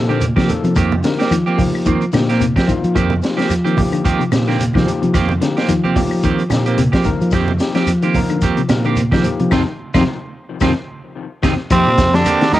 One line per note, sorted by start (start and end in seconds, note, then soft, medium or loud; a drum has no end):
0.00 0.33 A#2 medium
0.00 0.22 F3 medium
0.00 0.22 A#3 medium
0.00 0.22 D#4 medium
0.00 0.22 A4 medium
0.09 0.25 D3 medium
0.09 0.25 A#3 soft
0.09 0.25 C4 soft
0.09 0.24 G4 medium
0.09 shekere soft
0.21 closed hi-hat medium
0.21 high conga medium
0.21 shekere medium
0.36 0.53 D#3 medium
0.36 0.48 F3 medium
0.36 0.52 A#3 soft
0.36 0.52 C4 soft
0.36 0.52 G4 medium
0.36 kick medium
0.36 snare medium
0.36 high conga medium
0.36 claves medium
0.36 shekere soft
0.48 0.76 F3 medium
0.48 0.76 A#3 medium
0.48 0.77 D#4 medium
0.48 0.77 A4 medium
0.48 closed hi-hat medium
0.48 high conga medium
0.48 low conga medium
0.48 shekere medium
0.64 0.81 C3 medium
0.64 0.75 F3 medium
0.64 closed hi-hat soft
0.64 shekere soft
0.75 1.01 F2 loud
0.75 0.94 D#3 medium
0.75 0.94 A#3 medium
0.75 0.94 C4 medium
0.75 0.94 G4 medium
0.75 kick medium
0.75 closed hi-hat medium
0.75 claves medium
0.75 shekere medium
0.91 high conga medium
0.91 shekere soft
1.03 1.20 D3 medium
1.03 1.32 F3 medium
1.03 1.32 A#3 medium
1.03 1.32 D#4 medium
1.03 1.32 A#4 medium
1.03 snare medium
1.03 closed hi-hat medium
1.03 shekere medium
1.18 1.35 A#3 soft
1.18 1.34 C4 medium
1.18 1.34 G4 medium
1.18 snare medium
1.18 closed hi-hat soft
1.18 shekere soft
1.31 1.47 D#3 medium
1.31 2.09 F3 medium
1.31 closed hi-hat medium
1.31 claves medium
1.31 shekere medium
1.46 1.62 A#3 soft
1.46 1.62 C4 medium
1.46 1.61 G4 medium
1.46 shekere soft
1.57 1.86 F3 medium
1.57 1.74 F3 medium
1.57 1.86 A#3 medium
1.57 1.86 D#4 medium
1.57 1.86 G4 medium
1.57 kick medium
1.57 open hi-hat medium
1.57 high conga medium
1.57 low conga medium
1.57 shekere medium
1.74 claves medium
1.74 shekere soft
1.85 2.04 D#3 medium
1.85 2.02 D#3 medium
1.85 2.04 A#3 medium
1.85 2.04 C4 medium
1.85 muted clean electric guitar stroke medium
1.85 kick medium
1.85 closed hi-hat medium
1.85 shekere medium
2.01 closed hi-hat soft
2.01 shekere soft
2.12 2.52 A#2 medium
2.12 2.29 D3 medium
2.12 2.41 F3 medium
2.12 2.41 A#3 medium
2.12 2.41 D#4 medium
2.12 2.41 G4 medium
2.12 snare medium
2.12 closed hi-hat soft
2.12 high conga medium
2.12 claves medium
2.12 shekere medium
2.28 2.44 A#3 soft
2.28 2.44 C4 soft
2.28 2.44 G4 medium
2.28 snare soft
2.28 closed hi-hat soft
2.28 shekere soft
2.40 2.56 C3 medium
2.40 closed hi-hat medium
2.40 high conga medium
2.40 shekere medium
2.56 2.67 F3 medium
2.56 2.72 A#3 soft
2.56 2.71 C4 soft
2.56 2.71 G4 medium
2.56 kick medium
2.56 snare medium
2.56 closed hi-hat soft
2.56 claves medium
2.56 shekere soft
2.67 2.84 D#3 medium
2.67 2.96 F3 medium
2.67 2.96 A#3 medium
2.67 2.96 D#4 medium
2.67 2.96 F4 medium
2.67 kick medium
2.67 closed hi-hat soft
2.67 low conga medium
2.67 shekere medium
2.83 2.95 F3 medium
2.83 closed hi-hat soft
2.83 shekere soft
2.95 3.21 F2 medium
2.95 3.13 D#3 medium
2.95 3.11 F3 medium
2.95 3.13 A#3 medium
2.95 3.13 C4 medium
2.95 3.14 G4 medium
2.95 kick medium
2.95 closed hi-hat medium
2.95 claves medium
2.95 shekere medium
3.10 high conga medium
3.10 shekere soft
3.22 3.51 F3 medium
3.22 3.51 A#3 medium
3.22 3.51 D#4 medium
3.22 3.51 F4 medium
3.22 snare medium
3.22 closed hi-hat soft
3.22 shekere medium
3.37 3.54 F3 medium
3.37 3.53 A#3 soft
3.37 3.53 C4 medium
3.37 3.53 G4 medium
3.37 snare medium
3.37 closed hi-hat soft
3.37 shekere soft
3.50 4.29 F3 medium
3.50 closed hi-hat medium
3.50 claves medium
3.50 shekere medium
3.64 3.82 D#3 medium
3.64 3.81 A#3 medium
3.64 3.80 C4 soft
3.64 3.80 G4 medium
3.64 closed hi-hat soft
3.64 shekere soft
3.77 4.05 F3 medium
3.77 4.05 A#3 medium
3.77 4.05 D#4 medium
3.77 4.06 G4 loud
3.77 kick medium
3.77 open hi-hat medium
3.77 high conga medium
3.77 low conga medium
3.77 shekere medium
3.92 4.09 D3 medium
3.92 closed hi-hat soft
3.92 claves medium
3.92 shekere soft
4.04 4.22 D#3 medium
4.04 4.22 A#3 medium
4.04 4.23 C4 medium
4.04 4.23 G4 medium
4.04 kick medium
4.04 closed hi-hat medium
4.04 shekere medium
4.19 4.36 C3 medium
4.19 closed hi-hat soft
4.19 shekere soft
4.32 4.71 A#2 medium
4.32 4.60 F3 medium
4.32 4.60 A#3 medium
4.32 4.60 D#4 medium
4.32 4.60 G4 medium
4.32 snare medium
4.32 closed hi-hat medium
4.32 high conga medium
4.32 claves medium
4.32 shekere medium
4.47 4.63 D3 medium
4.47 4.63 A#3 medium
4.47 4.63 C4 medium
4.47 4.63 G4 soft
4.47 snare soft
4.47 shekere soft
4.59 closed hi-hat medium
4.59 high conga medium
4.59 shekere medium
4.73 4.91 D#3 medium
4.73 4.86 F3 medium
4.73 4.90 A#3 soft
4.73 4.90 C4 soft
4.73 kick medium
4.73 snare medium
4.73 high conga medium
4.73 claves medium
4.73 shekere soft
4.86 5.15 F3 medium
4.86 5.15 A#3 medium
4.86 5.15 D#4 medium
4.86 5.15 G4 medium
4.86 closed hi-hat medium
4.86 low conga medium
4.86 shekere medium
5.02 5.18 C3 medium
5.02 5.14 F3 medium
5.02 closed hi-hat soft
5.02 shekere soft
5.14 5.39 F2 loud
5.14 5.32 D#3 medium
5.14 5.32 A#3 medium
5.14 5.32 C4 medium
5.14 5.32 G4 medium
5.14 kick medium
5.14 snare soft
5.14 closed hi-hat medium
5.14 claves medium
5.14 shekere medium
5.29 high conga medium
5.29 shekere soft
5.42 5.58 D3 medium
5.42 5.70 F3 medium
5.42 5.70 A#3 medium
5.42 5.70 D#4 medium
5.42 5.70 G4 medium
5.42 snare medium
5.42 closed hi-hat medium
5.42 shekere medium
5.57 5.73 A#3 soft
5.57 5.73 C4 medium
5.57 5.72 G4 medium
5.57 snare medium
5.57 closed hi-hat soft
5.57 shekere soft
5.68 5.85 D#3 medium
5.68 6.47 F3 medium
5.68 closed hi-hat medium
5.68 claves medium
5.68 shekere medium
5.84 6.00 A#3 soft
5.84 6.00 C4 medium
5.84 5.99 G4 medium
5.84 high conga medium
5.84 shekere soft
5.96 6.24 F3 medium
5.96 6.13 F3 medium
5.96 6.24 A#3 medium
5.96 6.24 D#4 medium
5.96 6.25 G4 medium
5.96 kick medium
5.96 open hi-hat medium
5.96 high conga medium
5.96 low conga medium
5.96 shekere medium
6.11 claves medium
6.11 shekere soft
6.23 6.40 D#3 medium
6.23 6.42 D#3 medium
6.23 6.42 A#3 medium
6.23 6.42 C4 medium
6.23 6.42 G4 medium
6.23 kick medium
6.23 closed hi-hat medium
6.23 shekere medium
6.38 closed hi-hat soft
6.38 shekere soft
6.49 6.90 A#2 medium
6.49 6.67 D3 medium
6.49 6.78 F3 medium
6.49 6.79 A#3 medium
6.49 6.79 D#4 medium
6.49 6.79 G4 medium
6.49 snare medium
6.49 closed hi-hat medium
6.49 high conga medium
6.49 claves medium
6.49 shekere medium
6.66 6.82 A#3 soft
6.66 6.82 C4 soft
6.66 6.82 G4 medium
6.66 closed hi-hat soft
6.66 shekere soft
6.78 6.94 C3 medium
6.78 closed hi-hat medium
6.78 high conga medium
6.78 shekere medium
6.92 7.05 F3 medium
6.92 7.09 A#3 soft
6.92 7.09 C4 soft
6.92 7.08 G4 soft
6.92 kick medium
6.92 snare medium
6.92 closed hi-hat soft
6.92 claves medium
6.92 shekere soft
7.04 7.21 D#3 medium
7.04 7.33 F3 medium
7.04 7.33 A#3 medium
7.04 7.34 D#4 medium
7.04 7.34 A#4 medium
7.04 kick medium
7.04 closed hi-hat soft
7.04 high conga medium
7.04 low conga medium
7.04 shekere medium
7.21 7.32 F3 medium
7.21 closed hi-hat soft
7.21 shekere soft
7.31 7.58 F2 medium
7.31 7.51 D#3 medium
7.31 7.49 F3 medium
7.31 7.51 A#3 medium
7.31 7.51 C4 medium
7.31 7.52 G4 medium
7.31 kick medium
7.31 snare soft
7.31 closed hi-hat medium
7.31 claves medium
7.31 shekere medium
7.47 high conga medium
7.47 shekere soft
7.59 7.88 F3 medium
7.59 7.88 A#3 medium
7.59 7.88 D#4 medium
7.59 7.89 G4 medium
7.59 snare medium
7.59 closed hi-hat medium
7.59 shekere medium
7.74 7.91 F3 medium
7.74 7.92 A#3 medium
7.74 7.91 C4 medium
7.74 7.91 G4 medium
7.74 snare medium
7.74 closed hi-hat soft
7.74 shekere soft
7.87 8.66 F3 medium
7.87 closed hi-hat medium
7.87 claves medium
7.87 shekere medium
8.02 8.19 D#3 medium
8.02 8.19 A#3 soft
8.02 8.19 C4 medium
8.02 8.19 G4 medium
8.02 closed hi-hat soft
8.02 shekere soft
8.14 8.43 F3 medium
8.14 8.43 A#3 medium
8.14 8.43 D#4 medium
8.14 8.44 A#4 loud
8.14 kick medium
8.14 open hi-hat medium
8.14 high conga medium
8.14 low conga medium
8.14 shekere medium
8.30 8.46 D3 medium
8.30 closed hi-hat soft
8.30 claves medium
8.30 shekere soft
8.41 8.60 D#3 medium
8.41 8.61 A#3 medium
8.41 8.61 C4 medium
8.41 8.61 G4 medium
8.41 kick medium
8.41 closed hi-hat medium
8.41 shekere medium
8.57 8.74 C3 medium
8.57 closed hi-hat soft
8.57 shekere soft
8.69 9.09 A#2 medium
8.69 8.97 F3 medium
8.69 8.98 A#3 medium
8.69 8.98 D#4 medium
8.69 8.98 A#4 medium
8.69 snare medium
8.69 closed hi-hat soft
8.69 high conga medium
8.69 claves medium
8.69 shekere medium
8.85 9.01 D3 medium
8.85 9.01 A#3 soft
8.85 9.01 C4 medium
8.85 9.01 G4 medium
8.85 shekere soft
8.96 closed hi-hat medium
8.96 high conga medium
8.96 shekere medium
9.11 9.29 D#3 medium
9.11 9.23 F3 medium
9.11 9.28 A#3 soft
9.11 9.28 C4 medium
9.11 9.27 G4 soft
9.11 kick medium
9.11 snare medium
9.11 high conga medium
9.11 claves medium
9.11 shekere soft
9.23 9.52 F3 medium
9.23 9.51 A#3 medium
9.23 9.49 D#4 medium
9.23 9.52 G4 medium
9.23 closed hi-hat medium
9.23 low conga medium
9.23 shekere medium
9.39 9.47 C3 medium
9.39 9.51 F3 medium
9.39 closed hi-hat soft
9.39 shekere soft
9.51 9.63 F2 medium
9.51 9.62 C3 medium
9.51 9.62 D#3 medium
9.51 9.62 F3 medium
9.51 9.61 C4 medium
9.51 9.62 C4 loud
9.51 9.61 D#4 medium
9.51 9.62 D#4 medium
9.51 9.61 F4 medium
9.51 9.62 F4 medium
9.51 kick medium
9.51 snare medium
9.51 high conga loud
9.51 claves medium
9.51 shekere loud
9.94 10.04 F2 medium
9.94 10.02 C3 medium
9.94 10.02 D#3 medium
9.94 10.03 F3 medium
9.94 10.02 C4 medium
9.94 10.03 C4 medium
9.94 10.02 D#4 medium
9.94 10.03 D#4 medium
9.94 10.02 F4 medium
9.94 10.03 F4 medium
9.94 kick medium
9.94 snare medium
9.94 high conga medium
9.94 claves medium
9.94 shekere medium
10.61 10.73 F2 medium
10.61 10.71 C3 medium
10.61 10.71 D#3 medium
10.61 10.71 F3 medium
10.61 10.71 C4 medium
10.61 10.72 C4 medium
10.61 10.71 D#4 medium
10.61 10.72 D#4 medium
10.61 10.72 F4 medium
10.61 10.71 F4 medium
10.61 kick medium
10.61 snare medium
10.61 high conga medium
10.61 claves loud
10.61 shekere loud
11.43 11.55 F2 medium
11.43 11.53 C3 medium
11.43 11.53 D#3 medium
11.43 11.53 F3 medium
11.43 11.54 C4 medium
11.43 11.54 D#4 medium
11.43 11.54 F4 medium
11.43 kick medium
11.43 snare medium
11.43 high conga medium
11.43 claves medium
11.43 shekere loud
11.70 11.85 F2 medium
11.70 12.18 C3 medium
11.70 11.89 D#3 medium
11.70 11.87 F3 medium
11.70 11.89 A#3 medium
11.70 12.16 C4 medium
11.70 11.90 C4 medium
11.70 11.90 G4 medium
11.70 kick medium
11.70 closed hi-hat medium
11.70 claves medium
11.70 shekere medium
11.86 11.98 A#2 medium
11.98 12.23 F2 medium
11.98 kick medium
11.98 snare medium
11.98 closed hi-hat medium
11.98 high conga loud
11.98 shekere medium
12.14 12.55 D3 medium
12.14 12.30 F3 medium
12.14 12.53 D4 medium
12.14 snare medium
12.14 shekere soft
12.25 12.44 A#3 medium
12.25 12.44 C4 medium
12.25 12.44 G4 medium
12.25 muted clean electric guitar stroke medium
12.25 closed hi-hat medium
12.25 high conga soft
12.25 claves medium
12.25 shekere medium
12.41 12.57 D#3 medium
12.41 snare medium
12.41 closed hi-hat soft
12.53 12.60 A2 medium
12.53 12.60 D#3 medium
12.53 12.60 A#3 medium
12.53 12.60 D#4 loud
12.53 12.60 G4 medium
12.53 muted clean electric guitar stroke medium
12.53 open hi-hat medium
12.53 low conga medium
12.53 shekere soft